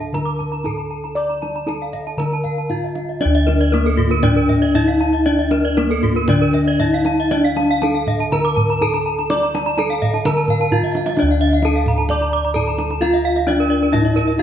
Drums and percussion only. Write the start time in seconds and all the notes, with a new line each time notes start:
0.02 kendang slap
0.15 kendang high, kendang low
0.40 kendang low
0.53 kendang slap
0.66 kendang low
0.79 kendang slap
1.05 kendang slap
1.30 kendang slap
1.43 kendang high
1.56 kendang slap
1.69 kendang high
1.81 kendang slap
1.93 kendang low
2.07 kendang slap
2.20 kendang high, kendang low
2.32 kendang slap
2.45 kendang low
2.57 kendang slap
2.70 kendang low
2.83 kendang slap
2.95 kendang high
3.09 kendang slap
3.22 kendang high
3.35 kendang slap
3.48 kendang high
3.61 kendang slap
3.73 kendang high
3.86 kendang slap
3.98 kendang low
4.10 kendang slap
4.23 kendang high, kendang low
4.49 kendang low
4.62 kendang slap
4.74 kendang low
4.88 kendang slap
5.13 kendang slap
5.39 kendang slap
5.51 kendang high
5.64 kendang slap
5.77 kendang high
5.90 kendang slap
6.03 kendang low
6.15 kendang slap
6.28 kendang high, kendang low
6.54 kendang low
6.66 kendang slap
6.79 kendang low
7.05 kendang high
7.31 kendang high
7.44 kendang slap
7.56 kendang high
7.70 kendang slap
7.82 kendang high
7.94 kendang slap
8.07 kendang low
8.19 kendang slap
8.32 kendang high, kendang low
8.57 kendang low
8.69 kendang slap
8.82 kendang low
8.94 kendang slap
9.19 kendang slap
9.30 kendang high
9.42 kendang slap
9.55 kendang high
9.67 kendang slap
9.78 kendang high
9.91 kendang slap
10.02 kendang low
10.14 kendang slap
10.25 kendang high, kendang low
10.37 kendang slap
10.48 kendang low
10.60 kendang slap
10.71 kendang low
10.83 kendang low
10.95 kendang high
11.06 kendang high
11.17 kendang high
11.29 kendang slap
11.52 kendang slap
11.62 kendang high
11.74 kendang slap
11.86 kendang low
11.98 kendang slap
12.09 kendang low
12.21 kendang slap
12.44 kendang slap
12.55 kendang low
12.68 kendang slap
12.78 kendang high
12.90 kendang slap
13.02 kendang high
13.14 kendang slap
13.37 kendang slap
13.49 kendang high
13.60 kendang slap
13.83 kendang slap
13.94 kendang high, kendang low
14.17 kendang low
14.29 kendang slap